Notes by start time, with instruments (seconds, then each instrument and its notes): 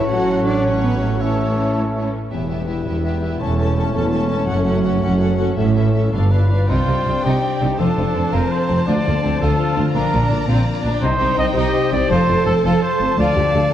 Already playing: harp A2 A3, clarinet C#5, trumpet C#5, flute A5
0.00 harp C#4
0.05 french horn section C#4, harp F#4, cello section F#4, cor anglais F#5, violin section F#5
0.09 double bass section A1, french horn section F#3, viola section F#3 C#4, violin section A4
0.45 cello section D4, violin section D5
0.64 viola section F#3 C#4, cello section C#4, violin section C#5
0.83 cello section B3, violin section B4
1.01 harp A2, cello section A3, violin section A4
1.08 harp A3
1.12 harp C#4
1.16 viola section E3 C#4, harp E4, violin section A4, trumpet C#5, flute A5
1.20 french horn section E3, cello section A3, violin section C#5, clarinet C#5, cor anglais E5
2.31 double bass section E1, cello section E2, harp E2, french horn section G3 E4, viola section B3, violin section G4 E5, trumpet B4
2.49 harp G3, viola section B3, violin section G4 E5
2.67 viola section B3, harp E4, violin section G4 E5
2.84 double bass section E1, cello section E2, viola section B3, violin section G4 E5, harp B4
3.04 viola section B3, violin section G4 E5, harp G4
3.22 viola section B3, harp E4, violin section G4 E5
3.40 double bass section E1, harp E2, cello section E2, french horn section A3, viola section C#4, violin section A4 A5, trumpet C#5
3.58 harp A3, viola section C#4, violin section A4 A5
3.77 viola section C#4, violin section A4 A5, harp A4
3.93 double bass section E1, cello section E2, viola section C#4, violin section A4 A5, harp C#5
4.11 viola section C#4, violin section A4 A5, harp A4
4.29 harp C#4, viola section C#4, violin section A4 A5
4.47 double bass section F#1, harp F#2, cello section F#2, viola section C#4, french horn section F#4, violin section A4 F#5
4.64 harp A3, viola section C#4, violin section A4 F#5
4.84 viola section C#4, harp F#4, violin section A4 F#5
5.01 double bass section F#1, cello section F#2, viola section C#4, violin section A4 F#5, harp C#5
5.19 viola section C#4, harp A4, violin section A4 F#5
5.37 viola section C#4, harp F#4, violin section A4 F#5
5.56 double bass section A1, cello section A2, harp A2, french horn section A3 E4, viola section C#4, violin section A4 E5, trumpet C#5
5.74 harp A3, viola section C#4, violin section A4 E5
5.93 viola section C#4, harp C#4 E4, violin section A4 E5
6.11 double bass section G1, cello section G2, harp G2, french horn section B3 F4, viola section D4, trumpet A4, violin section B4 F5
6.30 harp B3, viola section D4, trumpet B4, violin section B4 F5
6.50 viola section D4, harp D4 F4, violin section B4 F5
6.68 double bass section C2, cello section C3, harp C3, violin section D#4 D5 G5, viola section F4, trumpet C5
6.87 double bass section C2, cello section C3, harp C4, violin section D#4
7.05 double bass section C2, cello section C3, violin section D4, harp G4
7.24 double bass section C2, cello section C3, viola section D#4, violin section D#4, trumpet G4, harp C5
7.43 viola section C4, harp D4
7.60 double bass section C2, cello section C3, harp C4, violin section D4, viola section D#4
7.78 double bass section F1, cello section F2, harp F3, viola section D4, violin section F4 C5 A5, trumpet A4
7.98 double bass section F1, cello section F2, violin section F4, harp F4
8.16 double bass section F1, cello section F2, violin section C4, harp C5
8.32 double bass section F1, cello section F2, viola section C4, violin section F4, trumpet A#4, harp F5
8.51 harp A4, trumpet C5
8.69 double bass section F1, cello section F2, violin section C4, harp F4
8.87 cello section D2, double bass section D2, harp D3, viola section D4, violin section F4, trumpet D5
9.04 cello section D2, double bass section D2, viola section A#3, harp C4, violin section F4
9.23 cello section D2, double bass section D2, viola section C4, violin section D4, harp A4
9.40 cello section D2, double bass section D2, viola section F4, violin section F4, trumpet A4, harp C5
9.59 harp F4
9.76 cello section D2, double bass section D2, harp C4, violin section D4
9.93 double bass section A#1, cello section A#2, harp A#2, viola section D4, violin section F4 D5 A#5, trumpet A#4
10.13 double bass section A#1, cello section A#2, harp D4, violin section F4
10.30 double bass section A#1, cello section A#2, violin section D4, harp A#4
10.47 double bass section A#1, cello section A#2, viola section C4, violin section F4, harp D5
10.66 viola section A#3, harp F4
10.83 double bass section A#1, cello section A#2, viola section D4, harp D4, violin section D4
11.01 double bass section C2, cello section C3, harp C3, viola section D#4, violin section D#4 C5 G5, trumpet C5
11.20 double bass section C2, cello section C3, harp C4, violin section D#4
11.38 double bass section C2, cello section C3, violin section C4, harp G4, trumpet D#5
11.55 double bass section C2, cello section C3, violin section D#4, viola section G4, harp C5, trumpet D#5
11.74 harp D#4
11.92 double bass section C2, cello section C3, harp C4, violin section C4, trumpet D5
12.09 double bass section F1, cello section F2, harp F3, violin section F4 A5, viola section A4, trumpet C5
12.28 double bass section F1, cello section F2, violin section F4, harp F4
12.46 double bass section F1, cello section F2, violin section C4, harp A4, trumpet A4
12.63 double bass section F1, cello section F2, violin section F4, trumpet A4, harp F5
12.82 harp A4, trumpet C5
13.00 double bass section F1, cello section F2, violin section C4, harp F4
13.18 cello section D2, double bass section D2, harp D3, viola section F4, violin section F4 F5, trumpet D5
13.36 double bass section D2, cello section D2, harp A3, violin section F4, viola section G4
13.54 double bass section D2, cello section D2, violin section D4, harp A4, viola section A4